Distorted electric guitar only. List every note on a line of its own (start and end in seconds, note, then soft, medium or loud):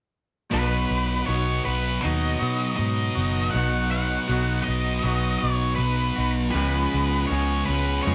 0.51 1.27 B2 medium
0.51 1.29 F#3 medium
0.51 1.30 B3 medium
1.27 2.01 B2 medium
1.27 1.68 F#3 medium
1.27 1.64 B3 medium
1.65 2.01 F#3 medium
1.65 2.04 B3 medium
2.01 2.76 B2 medium
2.01 2.77 F#3 medium
2.01 2.79 B3 medium
2.77 3.52 B2 medium
2.77 3.54 F#3 medium
2.77 3.55 B3 medium
3.53 4.26 B2 medium
3.53 4.28 F#3 medium
3.53 4.30 B3 medium
4.28 5.01 B2 medium
4.28 4.67 F#3 medium
4.28 4.64 B3 medium
4.65 5.03 F#3 medium
4.65 5.05 B3 medium
5.02 5.77 B2 medium
5.02 5.78 F#3 medium
5.02 5.81 B3 medium
5.78 6.52 B2 medium
5.78 6.53 F#3 medium
5.78 6.56 B3 medium
6.54 7.29 C#3 medium
6.54 7.32 G#3 medium
6.54 7.31 C#4 medium
7.30 8.04 C#3 medium
7.30 7.70 G#3 medium
7.30 7.66 C#4 medium
7.67 8.05 G#3 soft
7.67 8.06 C#4 medium
8.05 8.15 C#3 medium
8.05 8.15 G#3 medium
8.05 8.15 C#4 medium